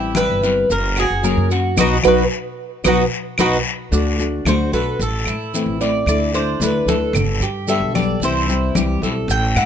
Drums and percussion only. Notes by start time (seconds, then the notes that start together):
0.15 high conga, short guiro, claves, maracas
0.43 high conga, short guiro, maracas
0.70 high conga, long guiro, maracas
0.96 high conga, claves, maracas
1.24 high conga, short guiro, maracas
1.51 high conga, short guiro, maracas
1.77 high conga, long guiro, claves, maracas
2.04 high conga, long guiro, claves, maracas
2.84 high conga, long guiro, claves, maracas
3.38 high conga, long guiro, claves, maracas
3.93 high conga, long guiro, maracas
4.19 high conga, maracas
4.45 high conga, short guiro, claves, maracas
4.73 high conga, short guiro, maracas
5.00 high conga, long guiro, maracas
5.26 high conga, claves, maracas
5.54 high conga, short guiro, maracas
5.81 high conga, short guiro, maracas
6.07 high conga, long guiro, claves, maracas
6.34 high conga, maracas
6.62 high conga, short guiro, maracas
6.88 high conga, short guiro, maracas
7.15 high conga, low conga, long guiro, claves, maracas
7.42 high conga, maracas
7.68 high conga, short guiro, maracas
7.95 high conga, short guiro, claves, maracas
8.22 high conga, long guiro, maracas
8.49 high conga, maracas
8.75 high conga, short guiro, claves, maracas
9.03 high conga, short guiro, maracas
9.30 high conga, long guiro, maracas
9.56 high conga, claves, maracas